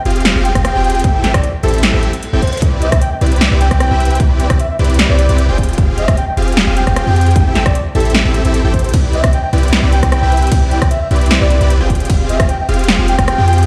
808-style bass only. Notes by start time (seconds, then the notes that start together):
0.05 F1
0.36 F1
0.55 F1
0.75 F1
1.04 A1
1.34 A1
1.63 A1
1.94 A1
2.33 A1
2.62 C2
2.92 C2
3.21 C2
3.51 C2
3.71 C2
3.91 C2
4.20 C2
4.50 C2
4.79 C2
5.09 C2
5.29 C2
5.49 F1
5.78 F1
6.08 F1
6.37 F1
6.67 F1
6.87 F1
7.07 F2
7.36 A1
7.66 A1
7.95 A1
8.25 A1
8.45 A1
8.65 A1
8.94 C2
9.24 C2
9.53 C2
9.83 C2
10.03 C2
10.22 C2
10.52 C2
10.82 C2
11.11 C2
11.41 C2
11.61 C2
11.81 F1
12.10 F1
12.40 F1
12.69 F1
12.99 F1
13.19 F1
13.38 F2